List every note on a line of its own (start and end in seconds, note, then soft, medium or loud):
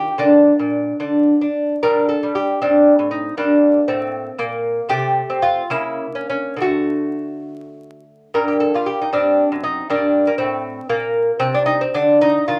0.00 0.17 G4 medium
0.18 0.51 D3 medium
0.18 0.96 A#3 soft
0.18 0.97 D4 medium
0.59 0.92 A#2 soft
1.00 1.33 D3 soft
1.00 1.40 D4 soft
1.41 1.74 D4 soft
1.83 2.14 G2 medium
1.83 2.57 D4 soft
1.83 2.08 A#4 medium
2.09 2.34 A4 medium
2.23 2.53 G3 soft
2.35 2.59 G4 medium
2.61 2.92 G2 medium
2.61 3.33 C4 soft
2.61 3.10 D4 medium
2.99 3.30 A2 soft
3.11 3.36 D#4 medium
3.37 3.78 G2 medium
3.37 4.38 A#3 soft
3.37 3.86 D4 medium
3.88 4.29 A2 soft
3.88 4.36 C4 medium
4.38 4.79 A#2 medium
4.38 4.87 A#3 medium
4.89 5.21 C3 medium
4.89 5.65 A3 soft
4.89 5.39 G4 medium
5.30 5.62 C4 medium
5.42 5.68 F4 medium
5.70 6.05 C#3 medium
5.70 6.56 A#3 soft
5.70 6.15 E4 medium
6.15 6.28 C#4 medium
6.30 6.58 C#4 medium
6.56 8.28 D3 soft
6.56 6.60 A3 soft
6.56 8.30 A3 soft
6.62 8.02 F#4 medium
8.34 8.66 G2 medium
8.34 9.09 A#3 soft
8.34 8.47 A#4 medium
8.48 8.60 G4 medium
8.60 8.73 A4 medium
8.74 9.05 G3 soft
8.74 8.87 F4 medium
8.86 8.99 G4 medium
9.01 9.13 D#4 soft
9.13 9.43 G2 medium
9.13 9.85 C4 soft
9.13 9.62 D4 medium
9.52 9.82 F#2 soft
9.64 9.88 D#4 medium
9.90 10.30 G2 medium
9.90 10.26 A#3 soft
9.90 10.26 D4 medium
10.27 10.38 A#3 medium
10.38 10.79 A2 soft
10.38 10.87 C4 medium
10.89 11.30 A#2 medium
10.89 11.38 A#3 medium
11.39 11.83 C3 medium
11.39 11.53 C4 medium
11.54 11.65 D4 medium
11.66 11.80 D#4 medium
11.81 11.94 C4 medium
11.94 12.38 D3 medium
11.94 12.20 D4 medium
12.21 12.47 D#4 medium
12.48 12.60 D#3 medium
12.48 12.60 F4 medium